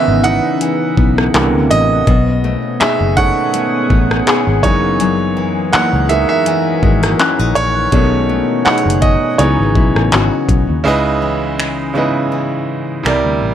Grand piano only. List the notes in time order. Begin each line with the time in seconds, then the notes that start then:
Already playing: D#3 E3 B3 D#5 E5
0.24 E3 B3 D#4 F#5
1.34 D3 E3 A#3
1.71 D#5
2.80 E5
3.17 D#3 G#3 A3 C#4 F#5
4.63 E3 G#3 A#3 D#4 C#5
5.73 F#5
6.09 E3 G#3 A#3 D#4 E5
6.29 E5
7.55 C#5
7.93 D#3 G#3 A3 C#4
8.65 F#5
9.02 D#5
9.38 E3 F#3 B3 D#4 C#5
10.84 C#3 G#3 E4 B4 D#5
11.94 C#3 G#3 E4 B4 D#5
13.03 C3 G3 E4 A#4 D5